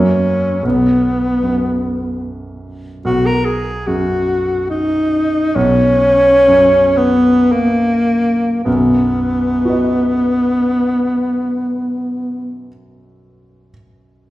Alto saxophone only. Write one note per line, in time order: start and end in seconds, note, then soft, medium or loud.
0.00 0.64 C#4 medium
0.65 2.22 B3 medium
3.05 3.27 F#4 loud
3.26 3.46 A#4 medium
3.44 3.88 G#4 medium
3.86 4.69 F#4 medium
4.70 5.57 D#4 medium
5.55 6.98 C#4 loud
6.97 7.53 B3 loud
7.52 8.63 A#3 medium
8.64 12.67 B3 medium